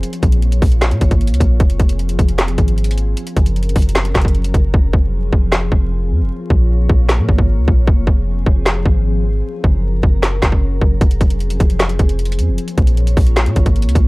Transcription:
0.03 ambient pad A#3 F4 C#5, closed hi-hat
0.13 closed hi-hat
0.23 808-style bass A#1, kick, closed hi-hat
0.32 closed hi-hat
0.42 closed hi-hat
0.52 closed hi-hat
0.62 808-style bass A#1, kick, open hi-hat
0.72 closed hi-hat
0.81 snare, clap, closed hi-hat
0.91 808-style bass A#2, closed hi-hat
1.01 808-style bass G#1, kick, closed hi-hat
1.11 kick, closed hi-hat
1.21 closed hi-hat
1.27 808-style bass C#2, closed hi-hat
1.34 closed hi-hat
1.40 808-style bass A#1, kick, closed hi-hat
1.60 808-style bass F1, ambient pad F3 C4 G#4, kick, closed hi-hat
1.70 closed hi-hat
1.80 808-style bass F1, kick, closed hi-hat
1.89 closed hi-hat
1.99 closed hi-hat
2.09 closed hi-hat
2.19 808-style bass F1, kick, closed hi-hat
2.29 closed hi-hat
2.38 snare, clap, closed hi-hat
2.48 closed hi-hat
2.58 808-style bass G#1, kick, closed hi-hat
2.68 closed hi-hat
2.78 closed hi-hat
2.84 closed hi-hat
2.91 closed hi-hat
2.98 closed hi-hat
3.17 ambient pad F#3 C#4 A#4, closed hi-hat
3.27 closed hi-hat
3.37 808-style bass F#1, kick, closed hi-hat
3.46 closed hi-hat
3.56 closed hi-hat
3.63 closed hi-hat
3.69 closed hi-hat
3.76 808-style bass F#1, kick, closed hi-hat, open hi-hat
3.82 closed hi-hat
3.89 closed hi-hat
3.95 snare, clap, closed hi-hat
4.05 closed hi-hat
4.15 808-style bass F#1, kick, snare, clap, closed hi-hat
4.22 kick, closed hi-hat
4.28 closed hi-hat
4.35 closed hi-hat
4.44 closed hi-hat
4.54 808-style bass F#1, kick, closed hi-hat
4.74 808-style bass F1, ambient pad F3 C4 G#4, kick
4.93 808-style bass F1, kick
5.33 808-style bass F1, kick
5.52 snare, clap
5.72 808-style bass F1, kick
6.11 808-style bass F2
6.21 808-style bass F1
6.31 ambient pad A#3 F4 C#5
6.50 808-style bass A#1, kick
6.89 808-style bass A#1, kick
7.09 snare, clap
7.19 808-style bass A#2
7.29 808-style bass G#1, kick
7.38 kick
7.58 808-style bass C#2
7.68 808-style bass A#1, kick
7.87 808-style bass F1, ambient pad F3 C4 G#4, kick
8.07 808-style bass F1, kick
8.46 808-style bass F1, kick
8.66 snare, clap
8.86 808-style bass G#1, kick
9.45 ambient pad F#3 C#4 A#4
9.64 808-style bass F#1, kick
10.03 808-style bass F#1, kick
10.23 snare, clap
10.42 808-style bass F#1, kick, snare, clap
10.52 kick
10.82 808-style bass F#1, kick
11.01 808-style bass F1, ambient pad F3 C4 G#4, kick, closed hi-hat
11.11 closed hi-hat
11.21 808-style bass F1, kick, closed hi-hat
11.30 closed hi-hat
11.40 closed hi-hat
11.50 closed hi-hat
11.60 808-style bass F1, kick, closed hi-hat
11.70 closed hi-hat
11.80 snare, clap, closed hi-hat
11.89 closed hi-hat
11.99 808-style bass F1, kick, closed hi-hat
12.09 closed hi-hat
12.19 closed hi-hat
12.25 closed hi-hat
12.32 closed hi-hat
12.38 808-style bass F2, closed hi-hat
12.48 808-style bass F1
12.58 ambient pad A#3 F4 C#5, closed hi-hat
12.68 closed hi-hat
12.78 808-style bass A#1, kick, closed hi-hat
12.87 closed hi-hat
12.97 closed hi-hat
13.07 closed hi-hat
13.17 808-style bass A#1, kick, open hi-hat
13.27 closed hi-hat
13.36 snare, clap, closed hi-hat
13.46 808-style bass A#2, closed hi-hat
13.56 808-style bass G#1, kick, closed hi-hat
13.66 kick, closed hi-hat
13.76 closed hi-hat
13.82 808-style bass C#2, closed hi-hat
13.89 closed hi-hat
13.95 808-style bass A#1, kick, closed hi-hat

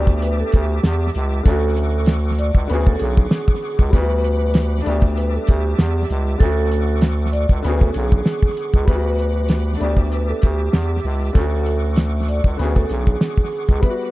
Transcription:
Already playing: fm bass D2, upright piano A3 B3 D4 G4, tonewheel organ G4 E5 A5 D6
0.07 kick
0.22 vibraphone B4, closed hi-hat
0.40 vibraphone A4
0.52 fm bass D2, vibraphone G4, kick, closed hi-hat
0.83 fm bass E2, snare, closed hi-hat
1.15 fm bass C#2, closed hi-hat
1.43 fm bass D2, upright piano D3 A3, vibraphone A4, tonewheel organ A4 F#5 C#6, kick, closed hi-hat
1.48 upright piano C#4 F#4
1.77 closed hi-hat
2.06 snare, closed hi-hat
2.38 vibraphone D5, closed hi-hat
2.55 fm bass C#2, kick
2.67 fm bass D2, upright piano D3 B3 C#4, tonewheel organ G#4, vibraphone B4, closed hi-hat
2.73 upright piano F#4 G#4
2.86 vibraphone A4, kick
2.99 fm bass B1, vibraphone G#4, closed hi-hat
3.17 kick
3.31 snare, closed hi-hat
3.48 kick
3.62 open hi-hat
3.79 fm bass C#2, kick
3.90 fm bass D2, upright piano G3 B3 E4, tonewheel organ G3 F#5 B5, kick, closed hi-hat
3.94 vibraphone B4
4.00 upright piano F#4
4.24 closed hi-hat
4.54 snare, closed hi-hat
4.82 upright piano A3 D4, tonewheel organ E5 A5
4.86 fm bass D2, upright piano B3 G4, vibraphone D5, closed hi-hat
5.02 kick
5.16 vibraphone B4, closed hi-hat
5.35 vibraphone A4
5.47 fm bass D2, vibraphone G4, kick, closed hi-hat
5.78 fm bass E2, snare, closed hi-hat
6.10 fm bass C#2, closed hi-hat
6.38 fm bass D2, upright piano D3 A3, vibraphone A4, tonewheel organ A4 F#5 C#6, kick, closed hi-hat
6.43 upright piano C#4 F#4
6.72 closed hi-hat
7.01 snare, closed hi-hat
7.33 vibraphone D5, closed hi-hat
7.49 fm bass C#2, kick
7.62 fm bass D2, upright piano D3 B3 C#4, tonewheel organ G#4, vibraphone B4, closed hi-hat
7.68 upright piano F#4 G#4
7.80 vibraphone A4, kick
7.94 fm bass B1, vibraphone G#4, closed hi-hat
8.12 kick
8.26 snare, closed hi-hat
8.43 kick
8.57 closed hi-hat
8.74 fm bass C#2, kick
8.85 fm bass D2, upright piano G3 B3 E4, tonewheel organ G3 F#5 B5 D6, vibraphone B4, kick, closed hi-hat
8.95 upright piano F#4
9.19 closed hi-hat
9.49 snare, closed hi-hat
9.76 upright piano A3 D4, tonewheel organ G4 E5 A5
9.81 fm bass D2, upright piano B3 G4, vibraphone D5, closed hi-hat
9.97 kick
10.12 vibraphone B4, closed hi-hat
10.29 vibraphone A4
10.42 fm bass D2, vibraphone G4, kick, closed hi-hat
10.73 fm bass E2, snare, closed hi-hat
11.05 fm bass C#2, open hi-hat
11.33 fm bass D2, upright piano D3 A3, vibraphone A4, tonewheel organ A4 F#5 C#6, kick, closed hi-hat
11.38 upright piano C#4 F#4
11.66 closed hi-hat
11.96 snare, closed hi-hat
12.28 vibraphone D5, closed hi-hat
12.44 fm bass C#2, kick
12.57 fm bass D2, upright piano D3 B3 C#4, tonewheel organ G#4, vibraphone B4, closed hi-hat
12.62 upright piano F#4 G#4
12.76 vibraphone A4, kick
12.89 fm bass B1, vibraphone G#4, closed hi-hat
13.07 kick
13.21 snare, closed hi-hat
13.38 kick
13.52 open hi-hat
13.69 fm bass C#2, kick
13.80 upright piano G3 B3 E4, tonewheel organ G3 F#5 B5, vibraphone B4, kick, closed hi-hat
13.90 upright piano F#4

